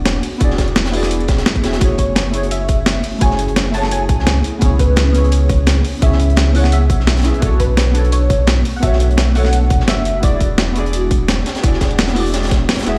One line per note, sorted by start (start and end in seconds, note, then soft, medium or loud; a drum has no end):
0.00 0.22 E1 loud
0.00 0.38 B3 medium
0.00 1.78 B3 medium
0.00 1.77 D4 medium
0.00 0.39 E4 medium
0.00 0.41 F#4 medium
0.00 1.77 F#4 medium
0.00 0.43 G#4 medium
0.00 7.39 G#4 medium
0.00 0.44 D5 medium
0.06 snare loud
0.06 closed hi-hat medium
0.23 closed hi-hat medium
0.23 open hi-hat medium
0.38 1.45 E1 loud
0.38 0.89 B3 medium
0.38 0.91 E4 medium
0.38 0.92 F#4 medium
0.38 kick loud
0.38 closed hi-hat medium
0.43 0.92 G#4 medium
0.43 0.93 D5 loud
0.50 snare medium
0.58 kick medium
0.58 snare loud
0.58 closed hi-hat medium
0.68 closed hi-hat soft
0.75 snare loud
0.75 closed hi-hat medium
0.75 closed hi-hat loud
0.85 snare loud
0.85 closed hi-hat medium
0.90 1.60 B3 medium
0.90 1.61 E4 medium
0.90 1.62 F#4 medium
0.90 open hi-hat medium
0.95 1.63 G#4 medium
0.95 1.64 D5 medium
1.03 snare soft
1.03 closed hi-hat medium
1.11 closed hi-hat medium
1.20 closed hi-hat soft
1.28 kick loud
1.28 snare loud
1.28 closed hi-hat medium
1.38 snare loud
1.38 closed hi-hat medium
1.46 snare loud
1.46 closed hi-hat medium
1.55 kick medium
1.55 closed hi-hat soft
1.62 1.80 E1 medium
1.62 1.72 B3 medium
1.62 1.72 E4 medium
1.62 1.73 F#4 medium
1.62 1.73 G#4 medium
1.62 1.73 E5 medium
1.62 snare medium
1.62 closed hi-hat medium
1.73 snare loud
1.73 closed hi-hat medium
1.78 3.03 F#1 loud
1.78 2.30 A3 medium
1.78 4.42 A3 medium
1.78 7.39 C#4 medium
1.78 2.31 E4 medium
1.78 7.39 E4 medium
1.78 2.32 F#4 medium
1.78 kick loud
1.78 closed hi-hat medium
1.83 2.33 G#4 medium
1.83 2.34 C#5 medium
1.98 2.53 C#5 medium
1.98 kick medium
1.98 closed hi-hat medium
2.16 snare loud
2.16 closed hi-hat loud
2.16 closed hi-hat medium
2.31 3.17 A3 medium
2.31 3.19 E4 medium
2.31 3.20 F#4 medium
2.31 closed hi-hat medium
2.36 3.20 G#4 medium
2.36 3.21 C#5 medium
2.43 closed hi-hat soft
2.51 3.24 E5 medium
2.51 closed hi-hat medium
2.51 closed hi-hat loud
2.68 kick loud
2.68 closed hi-hat medium
2.86 snare loud
2.86 closed hi-hat loud
2.86 closed hi-hat medium
3.03 closed hi-hat medium
3.03 open hi-hat medium
3.18 4.11 F#1 loud
3.18 3.70 A3 medium
3.18 3.71 E4 medium
3.18 3.72 F#4 medium
3.18 3.76 G#5 loud
3.18 kick loud
3.18 closed hi-hat loud
3.18 closed hi-hat medium
3.23 3.73 G#4 medium
3.23 3.74 C#5 medium
3.31 snare soft
3.39 closed hi-hat medium
3.48 closed hi-hat soft
3.56 snare loud
3.56 closed hi-hat medium
3.56 closed hi-hat loud
3.71 4.42 A3 medium
3.71 4.43 E4 medium
3.71 4.43 F#4 medium
3.71 3.92 A5 loud
3.71 closed hi-hat medium
3.71 open hi-hat medium
3.76 4.44 G#4 medium
3.76 4.45 C#5 medium
3.83 snare soft
3.91 4.24 G#5 loud
3.91 closed hi-hat loud
3.91 closed hi-hat medium
4.09 4.20 A1 medium
4.09 kick loud
4.09 closed hi-hat medium
4.19 4.43 C#2 medium
4.19 snare soft
4.27 snare loud
4.27 closed hi-hat loud
4.27 closed hi-hat medium
4.44 7.40 B3 medium
4.44 closed hi-hat medium
4.59 5.83 C#2 loud
4.59 5.10 B3 medium
4.59 5.12 C#4 medium
4.59 5.13 E4 medium
4.59 kick loud
4.59 closed hi-hat medium
4.63 5.13 G#4 medium
4.63 5.14 C#5 medium
4.79 5.34 B4 medium
4.79 kick medium
4.79 closed hi-hat medium
4.96 snare loud
4.96 closed hi-hat medium
4.96 closed hi-hat loud
5.11 5.98 B3 medium
5.11 6.00 C#4 medium
5.11 6.00 E4 medium
5.11 closed hi-hat medium
5.16 6.01 G#4 medium
5.16 6.02 C#5 medium
5.24 closed hi-hat soft
5.32 6.05 C#5 loud
5.32 closed hi-hat medium
5.32 closed hi-hat loud
5.49 kick loud
5.49 closed hi-hat medium
5.67 snare loud
5.67 closed hi-hat medium
5.67 closed hi-hat loud
5.85 closed hi-hat medium
5.85 open hi-hat medium
5.99 6.91 C#2 loud
5.99 6.50 B3 medium
5.99 6.52 C#4 medium
5.99 6.53 E4 medium
5.99 kick loud
5.99 closed hi-hat medium
6.03 6.54 G#4 medium
6.03 6.54 C#5 medium
6.03 6.57 E5 loud
6.12 snare soft
6.20 closed hi-hat medium
6.30 closed hi-hat soft
6.36 snare loud
6.36 closed hi-hat medium
6.51 7.22 B3 medium
6.51 7.23 C#4 medium
6.51 7.23 E4 medium
6.51 6.73 F#5 loud
6.51 open hi-hat medium
6.56 7.24 G#4 medium
6.56 7.25 C#5 medium
6.56 closed hi-hat medium
6.64 snare soft
6.72 7.05 E5 loud
6.72 closed hi-hat medium
6.90 7.33 B1 loud
6.90 kick loud
6.90 closed hi-hat medium
7.00 snare soft
7.07 snare loud
7.07 closed hi-hat medium
7.17 snare medium
7.17 closed hi-hat soft
7.17 closed hi-hat medium
7.21 7.33 B3 medium
7.21 7.33 C#4 medium
7.21 snare medium
7.21 closed hi-hat medium
7.25 7.34 E4 medium
7.25 7.34 G#4 medium
7.25 7.35 E5 medium
7.25 closed hi-hat medium
7.34 closed hi-hat soft
7.39 8.64 B1 loud
7.39 10.21 A3 medium
7.39 7.91 B3 medium
7.39 7.92 D4 medium
7.39 12.98 D4 medium
7.39 7.93 F#4 medium
7.39 12.98 F#4 medium
7.39 10.21 C#5 medium
7.39 kick loud
7.39 closed hi-hat medium
7.44 7.94 A4 medium
7.44 7.95 C#5 loud
7.60 8.14 B4 loud
7.60 kick medium
7.60 closed hi-hat medium
7.77 snare loud
7.77 closed hi-hat medium
7.77 closed hi-hat loud
7.92 8.79 B3 medium
7.92 8.80 D4 medium
7.92 8.81 F#4 medium
7.92 closed hi-hat medium
7.97 8.82 A4 medium
7.97 8.83 C#5 medium
8.04 closed hi-hat soft
8.12 8.78 C#5 loud
8.12 closed hi-hat medium
8.30 kick loud
8.30 closed hi-hat medium
8.47 snare loud
8.47 closed hi-hat medium
8.65 closed hi-hat medium
8.65 open hi-hat medium
8.76 9.31 B3 medium
8.76 8.83 F#5 medium
8.81 9.72 B1 loud
8.81 9.33 D4 medium
8.81 9.34 F#4 medium
8.81 9.34 A4 medium
8.81 9.37 E5 loud
8.81 kick loud
8.81 closed hi-hat medium
8.86 9.35 C#5 loud
8.93 snare soft
9.00 closed hi-hat medium
9.11 closed hi-hat soft
9.17 snare loud
9.17 closed hi-hat medium
9.32 10.19 B3 medium
9.32 10.21 D4 medium
9.32 10.21 F#4 medium
9.32 9.85 F#5 loud
9.32 closed hi-hat medium
9.32 open hi-hat medium
9.37 10.22 A4 medium
9.37 10.23 C#5 medium
9.45 snare soft
9.53 closed hi-hat medium
9.70 9.81 D2 medium
9.70 kick loud
9.70 closed hi-hat medium
9.80 10.22 F#1 medium
9.80 snare soft
9.88 10.24 E5 loud
9.88 snare loud
9.88 closed hi-hat medium
10.05 closed hi-hat medium
10.20 11.45 E1 loud
10.20 12.98 G#3 medium
10.20 10.72 B3 medium
10.20 12.98 B3 medium
10.20 10.73 E4 medium
10.20 10.74 F#4 medium
10.20 12.65 D5 medium
10.20 kick loud
10.20 closed hi-hat medium
10.25 10.75 G#4 medium
10.25 10.76 D5 medium
10.40 kick medium
10.40 closed hi-hat medium
10.58 snare loud
10.58 closed hi-hat medium
10.73 11.59 B3 medium
10.73 11.61 E4 medium
10.73 11.62 F#4 medium
10.73 closed hi-hat medium
10.78 11.63 G#4 medium
10.78 11.63 D5 medium
10.86 closed hi-hat soft
10.93 closed hi-hat medium
11.11 kick loud
11.11 closed hi-hat medium
11.28 snare loud
11.28 closed hi-hat medium
11.46 snare loud
11.46 closed hi-hat medium
11.55 snare loud
11.55 closed hi-hat medium
11.61 12.68 E1 loud
11.61 12.12 B3 medium
11.61 12.14 E4 medium
11.61 12.14 F#4 medium
11.61 kick loud
11.61 closed hi-hat loud
11.61 closed hi-hat medium
11.65 12.15 G#4 medium
11.65 12.16 D5 medium
11.73 snare medium
11.81 kick medium
11.81 snare loud
11.81 closed hi-hat medium
11.91 closed hi-hat soft
11.98 snare loud
11.98 closed hi-hat loud
11.98 open hi-hat medium
12.07 snare loud
12.07 closed hi-hat medium
12.13 12.83 B3 medium
12.13 12.84 E4 medium
12.13 12.85 F#4 medium
12.13 open hi-hat medium
12.18 12.86 G#4 medium
12.18 12.87 D5 medium
12.26 open hi-hat medium
12.34 snare loud
12.34 closed hi-hat loud
12.34 closed hi-hat medium
12.43 snare medium
12.43 closed hi-hat soft
12.43 closed hi-hat medium
12.47 snare medium
12.47 closed hi-hat medium
12.51 kick loud
12.51 snare loud
12.51 closed hi-hat medium
12.69 snare loud
12.69 snare medium
12.69 closed hi-hat loud
12.69 closed hi-hat medium
12.74 snare medium
12.74 closed hi-hat medium
12.78 snare medium
12.78 closed hi-hat soft
12.78 closed hi-hat medium
12.82 12.95 B3 medium
12.82 12.95 E4 medium
12.82 snare loud
12.82 closed hi-hat medium
12.86 12.98 E1 medium
12.86 12.95 F#4 medium
12.86 12.96 G#4 medium
12.86 12.96 E5 medium
12.86 closed hi-hat medium